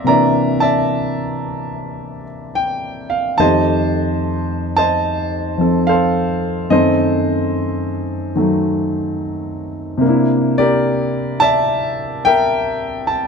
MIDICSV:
0, 0, Header, 1, 2, 480
1, 0, Start_track
1, 0, Tempo, 829876
1, 31, Time_signature, 4, 2, 24, 8
1, 7678, End_track
2, 0, Start_track
2, 0, Title_t, "Grand piano"
2, 0, Program_c, 0, 0
2, 0, Control_c, 0, 64, 127
2, 0, Note_on_c, 0, 74, 63
2, 0, Note_on_c, 0, 76, 65
2, 0, Note_on_c, 0, 79, 74
2, 0, Note_on_c, 0, 82, 89
2, 0, Note_on_c, 0, 84, 94
2, 0, Note_on_c, 0, 86, 99
2, 24, Note_on_c, 0, 48, 47
2, 35, Note_on_c, 0, 58, 48
2, 40, Note_off_c, 0, 82, 0
2, 40, Note_on_c, 0, 82, 86
2, 43, Note_on_c, 0, 62, 47
2, 46, Note_off_c, 0, 76, 0
2, 46, Note_on_c, 0, 76, 62
2, 48, Note_off_c, 0, 74, 0
2, 48, Note_on_c, 0, 74, 63
2, 53, Note_on_c, 0, 52, 55
2, 111, Note_off_c, 0, 82, 0
2, 349, Note_on_c, 0, 81, 92
2, 350, Note_off_c, 0, 76, 0
2, 351, Note_off_c, 0, 74, 0
2, 358, Note_on_c, 0, 76, 61
2, 360, Note_on_c, 0, 74, 58
2, 1287, Note_off_c, 0, 81, 0
2, 1292, Note_off_c, 0, 74, 0
2, 1292, Note_off_c, 0, 76, 0
2, 1477, Note_off_c, 0, 79, 0
2, 1477, Note_on_c, 0, 79, 81
2, 1771, Note_off_c, 0, 79, 0
2, 1792, Note_on_c, 0, 77, 73
2, 1828, Note_off_c, 0, 77, 0
2, 1949, Note_off_c, 0, 48, 0
2, 1953, Note_on_c, 0, 81, 97
2, 1955, Note_off_c, 0, 58, 0
2, 1958, Control_c, 0, 64, 0
2, 1959, Note_off_c, 0, 62, 0
2, 1960, Note_on_c, 0, 41, 46
2, 1962, Note_on_c, 0, 51, 44
2, 1963, Note_off_c, 0, 52, 0
2, 1963, Note_off_c, 0, 84, 0
2, 1964, Note_off_c, 0, 86, 0
2, 1965, Note_on_c, 0, 57, 43
2, 1967, Note_on_c, 0, 72, 70
2, 1967, Note_on_c, 0, 75, 68
2, 1969, Note_on_c, 0, 67, 49
2, 2076, Control_c, 0, 64, 127
2, 2729, Note_off_c, 0, 81, 0
2, 2756, Note_on_c, 0, 81, 99
2, 2757, Note_off_c, 0, 72, 0
2, 2759, Note_off_c, 0, 75, 0
2, 2765, Note_on_c, 0, 72, 56
2, 2767, Note_on_c, 0, 75, 59
2, 3211, Note_off_c, 0, 81, 0
2, 3227, Note_on_c, 0, 53, 38
2, 3237, Note_on_c, 0, 60, 36
2, 3245, Note_on_c, 0, 69, 47
2, 3394, Note_on_c, 0, 77, 90
2, 3399, Note_off_c, 0, 72, 0
2, 3400, Note_off_c, 0, 69, 0
2, 3408, Note_on_c, 0, 72, 64
2, 3409, Note_on_c, 0, 69, 65
2, 3697, Note_off_c, 0, 75, 0
2, 3850, Note_off_c, 0, 77, 0
2, 3857, Note_off_c, 0, 72, 0
2, 3858, Note_off_c, 0, 69, 0
2, 3869, Note_off_c, 0, 51, 0
2, 3871, Note_off_c, 0, 53, 0
2, 3873, Note_off_c, 0, 57, 0
2, 3875, Note_off_c, 0, 60, 0
2, 3876, Note_on_c, 0, 42, 47
2, 3877, Note_off_c, 0, 41, 0
2, 3877, Note_on_c, 0, 75, 86
2, 3878, Note_on_c, 0, 51, 42
2, 3881, Note_off_c, 0, 67, 0
2, 3881, Control_c, 0, 64, 0
2, 3882, Note_on_c, 0, 57, 46
2, 3884, Note_on_c, 0, 60, 51
2, 3889, Note_on_c, 0, 69, 59
2, 3889, Note_on_c, 0, 72, 64
2, 3985, Control_c, 0, 64, 127
2, 4812, Note_off_c, 0, 75, 0
2, 4818, Note_off_c, 0, 69, 0
2, 4818, Note_off_c, 0, 72, 0
2, 4824, Note_off_c, 0, 51, 0
2, 4833, Note_on_c, 0, 51, 44
2, 4840, Note_off_c, 0, 57, 0
2, 4840, Note_on_c, 0, 54, 39
2, 4849, Note_on_c, 0, 57, 48
2, 5770, Note_on_c, 0, 48, 55
2, 5791, Note_on_c, 0, 58, 50
2, 5792, Note_off_c, 0, 51, 0
2, 5794, Note_off_c, 0, 42, 0
2, 5796, Note_off_c, 0, 54, 0
2, 5798, Note_off_c, 0, 60, 0
2, 5800, Control_c, 0, 64, 0
2, 5801, Note_off_c, 0, 57, 0
2, 5811, Note_on_c, 0, 62, 47
2, 5832, Note_on_c, 0, 64, 58
2, 5915, Control_c, 0, 64, 127
2, 6119, Note_on_c, 0, 74, 90
2, 6126, Note_on_c, 0, 67, 60
2, 6128, Note_on_c, 0, 70, 64
2, 6593, Note_on_c, 0, 81, 115
2, 6596, Note_off_c, 0, 74, 0
2, 6604, Note_on_c, 0, 74, 69
2, 6604, Note_on_c, 0, 76, 71
2, 7055, Note_off_c, 0, 67, 0
2, 7056, Note_off_c, 0, 70, 0
2, 7084, Note_off_c, 0, 76, 0
2, 7084, Note_on_c, 0, 79, 106
2, 7086, Note_off_c, 0, 81, 0
2, 7093, Note_on_c, 0, 70, 67
2, 7093, Note_on_c, 0, 76, 69
2, 7534, Note_off_c, 0, 74, 0
2, 7534, Note_off_c, 0, 79, 0
2, 7561, Note_on_c, 0, 81, 85
2, 7678, Note_off_c, 0, 48, 0
2, 7678, Note_off_c, 0, 58, 0
2, 7678, Note_off_c, 0, 62, 0
2, 7678, Note_off_c, 0, 64, 0
2, 7678, Note_off_c, 0, 70, 0
2, 7678, Note_off_c, 0, 76, 0
2, 7678, Note_off_c, 0, 81, 0
2, 7678, End_track
0, 0, End_of_file